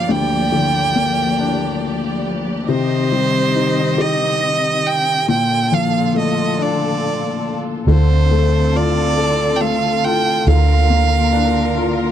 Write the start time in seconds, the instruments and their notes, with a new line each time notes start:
Already playing: string section F3 A#3 G4 D5, felt piano A#3 D4, violin F5
0.09 felt piano D2, violin G5
0.52 felt piano D3
0.96 felt piano A#3
1.39 felt piano D4
2.68 felt piano C3, string section D#3 C4 D#5, violin C5
3.12 felt piano G3
3.56 felt piano D#4
3.98 felt piano G4, violin D#5
4.87 violin G5
5.29 felt piano A#2, string section A#2 D3 F4 A4, violin G5
5.72 felt piano F3, violin F5
6.15 felt piano A3, violin D#5
6.58 felt piano D4, violin D5
7.87 fingered electric bass D2, felt piano D3, string section D3 C4 F4 A4, violin C5
8.31 felt piano A3
8.75 felt piano F4, violin D5
9.18 felt piano A4
9.56 violin G5
9.61 felt piano A3, violin F5
10.04 felt piano F4, violin G5
10.47 fingered electric bass D2, felt piano D3, string section D3 A#3 A#4, violin F5
10.90 felt piano A#3
11.33 felt piano D4
11.77 felt piano F4